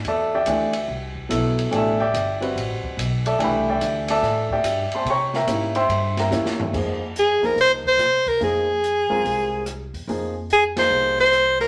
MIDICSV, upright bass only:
0, 0, Header, 1, 3, 480
1, 0, Start_track
1, 0, Tempo, 417827
1, 53, Time_signature, 4, 2, 24, 8
1, 13415, End_track
2, 0, Start_track
2, 0, Title_t, "Upright bass"
2, 0, Program_c, 0, 32
2, 55, Note_on_c, 0, 40, 88
2, 519, Note_off_c, 0, 40, 0
2, 533, Note_on_c, 0, 38, 82
2, 998, Note_off_c, 0, 38, 0
2, 1012, Note_on_c, 0, 36, 85
2, 1477, Note_off_c, 0, 36, 0
2, 1499, Note_on_c, 0, 35, 91
2, 1961, Note_off_c, 0, 35, 0
2, 1968, Note_on_c, 0, 33, 90
2, 2435, Note_off_c, 0, 33, 0
2, 2454, Note_on_c, 0, 31, 89
2, 2919, Note_off_c, 0, 31, 0
2, 2938, Note_on_c, 0, 33, 86
2, 3226, Note_off_c, 0, 33, 0
2, 3412, Note_on_c, 0, 35, 98
2, 3878, Note_off_c, 0, 35, 0
2, 3896, Note_on_c, 0, 36, 92
2, 4360, Note_off_c, 0, 36, 0
2, 4385, Note_on_c, 0, 38, 95
2, 4845, Note_off_c, 0, 38, 0
2, 4853, Note_on_c, 0, 45, 85
2, 5319, Note_off_c, 0, 45, 0
2, 5327, Note_on_c, 0, 43, 89
2, 5621, Note_off_c, 0, 43, 0
2, 5804, Note_on_c, 0, 48, 96
2, 6275, Note_off_c, 0, 48, 0
2, 6288, Note_on_c, 0, 44, 93
2, 6757, Note_off_c, 0, 44, 0
2, 6762, Note_on_c, 0, 43, 97
2, 7235, Note_off_c, 0, 43, 0
2, 7246, Note_on_c, 0, 40, 92
2, 7717, Note_off_c, 0, 40, 0
2, 7738, Note_on_c, 0, 41, 84
2, 8485, Note_off_c, 0, 41, 0
2, 8528, Note_on_c, 0, 40, 62
2, 8677, Note_off_c, 0, 40, 0
2, 8683, Note_on_c, 0, 36, 76
2, 9137, Note_off_c, 0, 36, 0
2, 9165, Note_on_c, 0, 48, 74
2, 9618, Note_off_c, 0, 48, 0
2, 9660, Note_on_c, 0, 41, 88
2, 10407, Note_off_c, 0, 41, 0
2, 10457, Note_on_c, 0, 42, 65
2, 10610, Note_off_c, 0, 42, 0
2, 10625, Note_on_c, 0, 36, 86
2, 11368, Note_off_c, 0, 36, 0
2, 11415, Note_on_c, 0, 40, 61
2, 11569, Note_off_c, 0, 40, 0
2, 11574, Note_on_c, 0, 41, 86
2, 12489, Note_off_c, 0, 41, 0
2, 12530, Note_on_c, 0, 36, 85
2, 13415, Note_off_c, 0, 36, 0
2, 13415, End_track
3, 0, Start_track
3, 0, Title_t, "Muted upright bass strokes"
3, 3260, Note_on_c, 9, 29, 40
3, 3375, Note_off_c, 9, 29, 0
3, 13415, End_track
0, 0, End_of_file